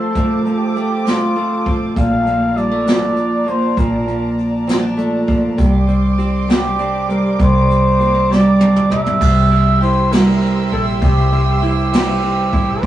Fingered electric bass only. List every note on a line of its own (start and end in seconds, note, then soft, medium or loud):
1.97 3.74 A#1 medium
3.77 5.54 A#1 medium
5.58 7.35 C2 medium
7.40 9.17 C2 loud
9.21 10.68 C2 loud
10.72 11.00 A#1 medium
11.02 12.49 C2 medium
12.53 12.81 A1 medium
12.83 12.86 A#1 loud